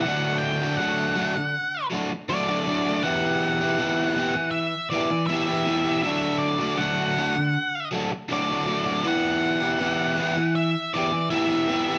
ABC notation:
X:1
M:4/4
L:1/16
Q:1/4=80
K:Em
V:1 name="Lead electric guitar"
f2 g2 f6 z2 d4 | f8 e2 d2 e4 | e2 d2 f6 z2 d4 | f8 e2 d2 e4 |]
V:2 name="Overdriven electric guitar"
[D,F,A,DF]3 [A,DF] [D,F,A,DF]2 [F,A,DF]3 z [F,A,DF]2 [D,F,A,DF] [A,DF] [F,A,DF] [A,DF] | [E,B,EG]3 [B,EG] [E,B,EG]2 [E,B,EG]3 z [E,B,EG]2 [E,B,EG] [B,EG] [E,B,EG] [B,EG] | [D,F,A,DF]3 [A,DF] [D,F,A,DF]2 [F,A,DF]3 z [F,A,DF]2 [D,F,A,DF] [A,DF] [F,A,DF] [A,DF] | [E,B,EG]3 [B,EG] [E,B,EG]2 [E,B,EG]3 z [E,B,EG]2 [E,B,EG] [B,EG] [E,B,EG] [B,EG] |]